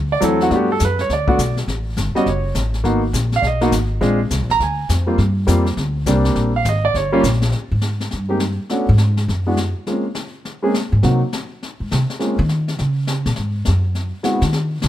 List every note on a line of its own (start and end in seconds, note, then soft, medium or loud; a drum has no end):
0.00 0.21 D2 medium
0.12 0.22 D5 medium
0.21 0.50 E2 medium
0.21 0.51 F#3 medium
0.21 0.49 A3 medium
0.21 0.51 C4 medium
0.21 0.51 E4 medium
0.21 0.41 A4 medium
0.21 kick soft
0.21 snare medium
0.21 hi-hat pedal medium
0.40 0.50 F#4 medium
0.40 snare soft
0.50 0.80 G2 medium
0.50 0.67 A3 medium
0.50 0.68 B3 medium
0.50 0.68 D4 medium
0.50 0.68 F#4 medium
0.50 brush sweep medium
0.50 kick soft
0.50 snare soft
0.55 0.71 G4 medium
0.72 0.81 A4 medium
0.79 1.09 F#2 medium
0.79 kick soft
0.79 snare medium
0.79 hi-hat pedal medium
0.85 1.00 B4 medium
0.99 1.10 C#5 medium
0.99 snare soft
1.09 1.38 D2 medium
1.09 1.56 D5 medium
1.09 brush sweep medium
1.09 kick soft
1.09 snare soft
1.27 1.38 A3 medium
1.27 1.38 B3 medium
1.27 1.38 D4 medium
1.27 1.38 F#4 loud
1.27 kick medium
1.39 1.67 B1 loud
1.39 kick soft
1.39 snare medium
1.39 hi-hat pedal medium
1.57 snare soft
1.68 1.96 A1 medium
1.68 brush sweep medium
1.68 kick soft
1.68 snare soft
1.97 2.14 G1 medium
1.97 kick soft
1.97 snare medium
1.97 hi-hat pedal medium
2.15 2.25 G3 medium
2.15 2.26 B3 medium
2.15 2.25 C#4 medium
2.15 2.26 F#4 medium
2.15 2.27 D#5 medium
2.15 muted upright bass stroke soft
2.15 snare soft
2.26 2.54 F#1 medium
2.26 2.55 C#5 medium
2.26 brush sweep soft
2.26 kick soft
2.26 snare soft
2.55 2.84 A1 medium
2.55 kick soft
2.55 snare medium
2.55 hi-hat pedal medium
2.74 snare soft
2.84 3.13 G#1 medium
2.84 3.01 A#3 medium
2.84 3.01 B3 medium
2.84 3.01 D#4 medium
2.84 3.02 F#4 medium
2.84 brush sweep soft
2.84 kick soft
2.84 snare soft
3.13 3.42 A#1 loud
3.13 kick soft
3.13 snare medium
3.13 hi-hat pedal medium
3.32 3.45 F5 loud
3.32 snare soft
3.42 3.71 B1 medium
3.42 3.44 D5 medium
3.42 brush sweep soft
3.42 kick soft
3.42 snare soft
3.47 3.73 D#5 medium
3.61 3.71 A#3 medium
3.61 3.71 B3 medium
3.61 3.72 D#4 medium
3.61 3.72 F#4 medium
3.61 snare soft
3.72 4.01 G#1 medium
3.72 kick soft
3.72 snare medium
3.72 hi-hat pedal medium
4.01 4.30 A#1 medium
4.01 4.18 G#3 medium
4.01 4.18 C4 medium
4.01 4.18 D4 medium
4.01 4.18 F4 medium
4.01 brush sweep soft
4.01 kick soft
4.01 snare soft
4.30 4.40 C2 medium
4.30 kick soft
4.30 snare medium
4.30 hi-hat pedal medium
4.40 4.49 A#1 medium
4.50 4.59 G#1 medium
4.50 4.61 A#5 loud
4.50 snare soft
4.60 4.88 D2 medium
4.60 4.89 G#5 medium
4.60 brush sweep medium
4.60 kick soft
4.60 snare soft
4.89 5.17 F2 loud
4.89 kick soft
4.89 snare medium
4.89 hi-hat pedal medium
5.07 5.17 G3 medium
5.07 5.17 A#3 medium
5.07 5.18 C4 medium
5.07 5.18 F4 medium
5.18 5.47 G2 medium
5.18 brush sweep medium
5.18 kick soft
5.18 snare soft
5.47 5.76 F2 loud
5.47 5.64 G3 medium
5.47 5.64 A#3 medium
5.47 5.64 C4 medium
5.47 5.64 F4 medium
5.47 kick soft
5.47 snare medium
5.47 hi-hat pedal medium
5.66 snare soft
5.77 6.06 D2 medium
5.77 brush sweep soft
5.77 kick soft
5.77 snare soft
6.06 6.35 C2 loud
6.06 6.51 G3 medium
6.06 6.50 A#3 medium
6.06 6.51 C4 medium
6.06 6.51 D4 medium
6.06 kick soft
6.06 snare medium
6.06 hi-hat pedal medium
6.25 snare soft
6.35 6.64 A#1 medium
6.35 brush sweep soft
6.35 kick soft
6.35 snare soft
6.56 6.66 F5 medium
6.65 6.93 G#1 loud
6.65 6.85 D#5 medium
6.65 kick soft
6.65 snare medium
6.65 hi-hat pedal medium
6.85 6.95 D5 loud
6.94 7.23 G1 medium
6.94 7.22 C#5 medium
6.94 brush sweep soft
6.94 kick soft
6.94 snare soft
7.12 7.22 G3 medium
7.12 7.22 A#3 medium
7.12 7.23 C#4 medium
7.12 7.23 F4 loud
7.23 7.52 A#1 loud
7.23 kick soft
7.23 snare medium
7.23 hi-hat pedal medium
7.33 snare soft
7.42 snare soft
7.42 snare medium
7.52 brush sweep soft
7.52 snare soft
7.71 8.09 G#2 medium
7.81 snare medium
8.00 snare soft
8.11 8.56 G2 medium
8.11 brush sweep medium
8.11 snare soft
8.29 8.39 G#3 medium
8.29 8.39 A#3 medium
8.29 8.39 C4 medium
8.29 8.40 D#4 medium
8.29 8.40 G4 medium
8.40 snare medium
8.70 8.86 A3 medium
8.70 8.87 B3 medium
8.70 8.87 C#4 medium
8.70 8.87 D4 medium
8.70 8.87 F#4 medium
8.70 brush sweep soft
8.70 snare medium
8.89 9.26 G#2 loud
8.98 snare medium
9.17 snare soft
9.28 9.72 F#2 medium
9.28 brush sweep soft
9.28 snare soft
9.46 9.56 G#3 medium
9.46 9.57 B3 medium
9.46 9.57 D4 medium
9.46 9.57 E4 medium
9.46 9.57 F#4 medium
9.57 snare medium
9.87 10.03 G#3 medium
9.87 10.04 A#3 soft
9.87 10.04 C4 soft
9.87 10.04 C#4 soft
9.87 10.04 F4 medium
9.87 brush sweep soft
9.87 snare soft
10.15 snare medium
10.45 brush sweep medium
10.45 snare soft
10.62 10.73 G#3 medium
10.62 10.73 A#3 medium
10.62 10.73 C4 medium
10.62 10.73 C#4 medium
10.62 10.73 G#4 medium
10.74 snare medium
10.92 11.03 G#2 medium
11.03 11.21 C3 medium
11.03 11.20 F#3 medium
11.03 11.20 A#3 medium
11.03 11.20 C4 medium
11.03 11.20 D#4 medium
11.03 11.20 F#4 medium
11.03 brush sweep soft
11.03 snare medium
11.33 snare medium
11.63 brush sweep soft
11.63 snare soft
11.80 11.91 G#2 medium
11.91 12.03 C3 medium
11.91 snare medium
12.10 snare soft
12.19 12.36 G#3 medium
12.19 12.36 A#3 medium
12.19 12.36 C4 soft
12.19 12.37 C#4 medium
12.19 12.37 F4 medium
12.19 brush sweep soft
12.19 snare soft
12.39 12.76 D#3 loud
12.49 snare medium
12.68 snare soft
12.78 13.23 C#3 medium
12.78 brush sweep soft
12.78 snare soft
13.07 snare medium
13.26 13.36 A#2 medium
13.26 snare soft
13.36 13.64 G#2 medium
13.36 brush sweep soft
13.36 snare soft
13.65 14.11 F#2 medium
13.65 snare medium
13.95 brush sweep soft
13.95 snare soft
14.23 14.40 G#3 medium
14.23 14.40 B3 medium
14.23 14.40 C4 medium
14.23 14.41 E4 medium
14.23 14.41 F#4 medium
14.23 snare medium
14.41 14.79 D#3 loud
14.41 snare medium
14.53 brush sweep medium
14.53 snare soft
14.82 14.88 C#3 medium
14.82 snare medium